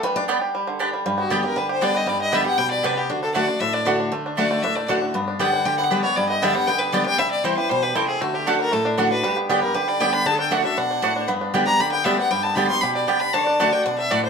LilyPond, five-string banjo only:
\new Staff \with { instrumentName = "Five-string banjo" } { \time 4/4 \key g \major \tempo 4 = 234 g8 d'8 g8 g'8 g8 d8 d'8 g8 | g8 b8 g8 g'8 g8 g'8 d'8 b8 | g8 b8 g8 g'8 g8 g'8 d'8 b8 | d'8 d'8 d'8 d'8 d'8 d'8 d'8 d'8 |
a8 d'8 d'8 a8 d'8 a8 d'8 d'8 | b8 d'8 g'8 d'8 g'8 b8 d'8 b8 | g8 b8 d'8 g8 b8 g8 b8 d'8 | g4 g8 g'8 g8 g'8 e'8 c'8 |
a8 d'8 a8 d'8 a8 d'8 d'8 d'8 | g8 b8 g'8 g8 g'8 g8 g'8 d'8 | d'8 d'8 d'8 d'8 d'8 d'8 d'8 d'8 | b8 d'8 g'8 d'8 g'8 b8 d'8 b8 |
g8 b8 g'8 g8 g'8 g8 g'8 d'8 | d'8 d'8 d'8 d'8 d'8 d'8 d'8 d'8 | }